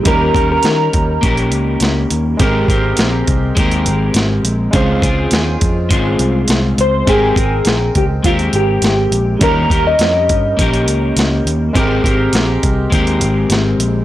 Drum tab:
HH |x-x-x-x-xxx-x-x-|x-x-x-x-xxx-x-x-|x-x-x-x-x-x-x-x-|x-x-x-x-xxx-x-x-|
SD |----o-------o---|----o-------o---|----o-------o---|----o-------o---|
BD |o-o---o-o-------|o-o---o-o-------|o-o---o-o-------|o-o---o-o-------|

HH |x-x-x-x-xxx-x-x-|x-x-x-x-xxx-x-x-|
SD |----o-------o---|----o-------o---|
BD |o-o---o-o-------|o-o---o-o-------|